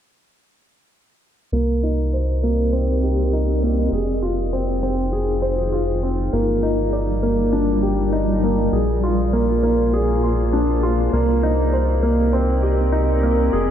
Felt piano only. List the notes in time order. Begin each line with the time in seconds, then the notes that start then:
1.53 A#3
1.83 D#4
2.13 C5
2.43 A#3
2.73 C4
3.03 G4
3.33 D#4
3.63 A#3
3.93 G#4
4.22 F4
4.53 C4
4.83 C4
5.13 G#4
5.42 C5
5.72 F4
6.03 C4
6.33 A#3
6.63 D#4
6.93 D5
7.23 A#3
7.53 D4
7.82 G4
8.12 D#4
8.43 A#3
8.73 G#4
9.04 F4
9.33 A#3
9.63 A#3
9.94 G#4
10.23 F4
10.53 D4
10.83 F4
11.13 A#3
11.43 D#4
11.73 C5
12.03 A#3
12.33 C4
12.63 G4
12.92 D#4
13.23 A#3
13.53 G#4